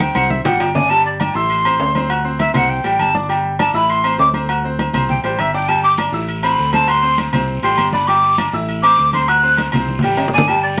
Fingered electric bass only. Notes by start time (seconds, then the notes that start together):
0.15 C2
0.45 A1
0.60 G1
1.35 A1
1.79 D2
2.54 C2
2.84 A1
2.99 G1
3.74 A1
4.18 D2
4.93 C2
5.23 A1
5.38 G1
6.12 A1
6.58 D2
7.33 C2
7.63 A1
7.77 G1
8.53 A1
8.98 D2
9.73 C2
10.03 A1
10.18 G1